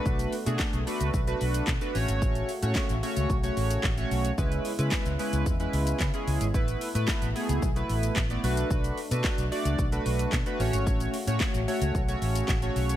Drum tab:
HH |-xox-xox-xox-xox|-xox-xox-xox-xox|-xox-xox-xox-xox|-xox-xox-xox-xox|
SH |xxxxxxxxxxxxxxxx|xxxxxxxxxxxxxxxx|xxxxxxxxxxxxxxxx|xxxxxxxxxxxxxxxx|
CP |----x-------x---|----x-------x---|----x-------x---|----x-------x---|
SD |----o-------o---|----o-------o---|----o-------o---|----o-------o---|
BD |o---o---o---o---|o---o---o---o---|o---o---o---o---|o---o---o---o---|

HH |-xox-xox-xox-xox|-xox-xox-xox-xox|
SH |xxxxxxxxxxxxxxxx|xxxxxxxxxxxxxxxx|
CP |----x-------x---|----x-------x---|
SD |----o-------o---|----o-------o---|
BD |o---o---o---o---|o---o---o---o---|